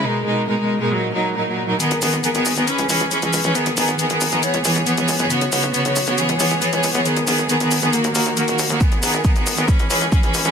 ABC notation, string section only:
X:1
M:4/4
L:1/16
Q:1/4=137
K:G#m
V:1 name="String section"
[B,,G,DA]2 [B,,G,DA]2 [B,,G,DA] [B,,G,DA]2 [B,,G,DA] [A,,F,DA]2 [A,,F,DA]2 [A,,F,DA] [A,,F,DA]2 [A,,F,DA] | [D,B,GA]2 [D,B,GA]2 [D,B,GA] [D,B,GA]2 [D,B,GA] [E,CGB]2 [E,CGB]2 [E,CGB] [E,CGB]2 [E,CGB] | [D,B,GA]2 [D,B,GA]2 [D,B,GA] [D,B,GA]2 [D,B,GA] [E,B,Gc]2 [E,B,Gc]2 [E,B,Gc] [E,B,Gc]2 [E,B,Gc] | [C,B,Fc]2 [C,B,Fc]2 [C,B,Fc] [C,B,Fc]2 [C,B,Fc] [E,B,Gc]2 [E,B,Gc]2 [E,B,Gc] [E,B,Gc]2 [E,B,Gc] |
[D,B,GA]2 [D,B,GA]2 [D,B,GA] [D,B,GA]2 [D,B,GA] [D,A,FA]2 [D,A,FA]2 [D,A,FA] [D,A,FA]2 [D,A,FA] | [D,B,GA]2 [D,B,GA]2 [D,B,GA] [D,B,GA]2 [D,B,GA] [E,CGB]2 [E,CGB]2 [E,CGB] [E,CGB]2 [E,CGB] |]